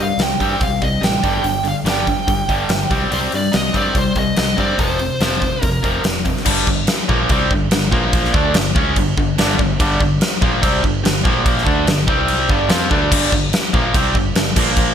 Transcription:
Already playing: G2
0.00 C3 G3 F5
0.18 C2 C3 G3, snare, open hi-hat
0.23 G5
0.40 G2 C3 G3 C4, kick, open hi-hat
0.60 C2 C3 G3 F5, kick, open hi-hat
0.81 C2 C3 G3 D#5, kick, open hi-hat
1.01 A1 C3 G3 G5, snare, open hi-hat
1.23 G1 G2 D3 G3, kick, open hi-hat
1.43 G1 G2 D3, open hi-hat
1.50 G5
1.63 G2 D3, open hi-hat
1.69 F5
1.84 G1 G2 D3 G3, snare, open hi-hat
1.90 G5
2.06 G2 D3, kick, open hi-hat
2.27 G2 D3, kick, open hi-hat
2.48 G1 G2 D3 G3, kick, open hi-hat
2.69 G1 G2 D3, snare, open hi-hat
2.90 C2 C3 G3 C4, kick, open hi-hat
3.11 C2 C3 G3 C4 C5, open hi-hat
3.32 G2 C3 G3 D5, open hi-hat
3.52 C2 C3 G3, snare, open hi-hat
3.56 D#5
3.74 G2 C3 G3 C4 D5, kick, open hi-hat
3.95 C2 C3 G3 C5, kick, open hi-hat
4.15 C2 C3 G3 D#5, kick, open hi-hat
4.36 C2 C3 G3, snare, open hi-hat
4.57 G2 C3 G3 C4 D5, kick, open hi-hat
4.77 F1 F2 C3 F3 C5, kick, open hi-hat
4.99 F2 C3, open hi-hat
5.20 F1 F2 C3 F3, snare, open hi-hat
5.41 F2 C3, kick, open hi-hat
5.62 F2 C3 A#4, kick, open hi-hat
5.83 F1 F2 C3 F3, kick, open hi-hat
6.03 F1 F2 C3, snare, open hi-hat
6.24 F2 C3, kick, open hi-hat
6.37 snare
6.45 G1 G2 D3 G3, kick, crash
6.67 G1 G2 D3, kick
6.87 snare, crash
7.08 A#1 A#2 F3 A#3, kick
7.29 C2 C3 G3 C4, kick, crash
7.51 G1 G2 D3, kick
7.71 G1 G2 D3, snare, crash
7.91 A#1 A#2 F3 A#3, kick
8.13 kick, crash
8.24 snare
8.33 D2 D3 A3 D4, kick
8.54 G1 G2 D3, snare, crash
8.75 C#2 C#3 G#3 C#4, kick
8.96 G1 G2 D3, kick, crash
9.17 G1 G2 D3, kick
9.38 G1 G2 D3 G3, snare, crash
9.59 G1 G2 D3, kick
9.79 G1 G2 D3 G3, kick, crash
10.00 G1 G2 D3, kick
10.21 snare, crash
10.41 A#1 A#2 F3 A#3, kick
10.61 C2 C3 G3 C4, kick, crash
10.83 G1 G2 D3, kick
11.04 G1 G2 D3, snare, crash
11.24 A#1 A#2 F3 A#3, kick
11.46 kick, crash
11.58 snare
11.64 D2 D3 A3 D4, kick
11.86 G1 G2 D3, snare, crash
12.07 C2 C3 G3 C4, kick
12.28 crash
12.49 G1 G2 D3 G3, kick
12.69 F2 F3 C4 F4, snare, crash
12.90 D2 D3 A3 D4, kick
13.11 G1 G2 D3 G3, kick, crash
13.23 snare
13.32 G1 G2 D3, kick
13.53 snare, crash
13.73 A#1 A#2 F3 A#3, kick
13.94 C2 C3 G3 C4, kick, crash
14.15 G1 G2 D3, kick
14.34 G1 G2 D3, snare, crash
14.56 A#1 A#2 F3 A#3, kick, crash
14.76 kick, crash

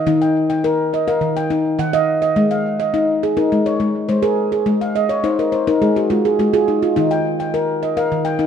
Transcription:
Already playing: D#5
0.07 D#3 D#4
0.22 G5
0.50 G5
0.64 A#4
0.94 D#5
1.08 A#4 F5
1.21 D#3
1.37 G5
1.50 D#4
1.79 D#3 F#5
1.93 D#5 F5
2.22 D#5
2.36 G#3
2.51 F5
2.80 D#5
2.94 D#4
3.23 G#4
3.37 D#4 A#4
3.52 G#3
3.66 C#5
3.80 G#3
4.09 G#3 C5
4.23 G#4 A#4
4.52 G#4
4.66 G#3
4.81 F5
4.96 D#5
5.09 C#5
5.24 D#4 C5
5.39 A#4
5.52 C5
5.67 D#4 A#4
5.82 G#3 G#4
5.96 F#4
6.10 G#3 F4
6.25 G#4
6.39 G#3 F#4
6.53 F4 G#4
6.68 D#4
6.83 F4
6.96 D#3 D#4
7.11 G5
7.40 G5
7.54 A#4
7.83 D#5
7.97 A#4 F5
8.12 D#3
8.25 G5
8.39 D#4

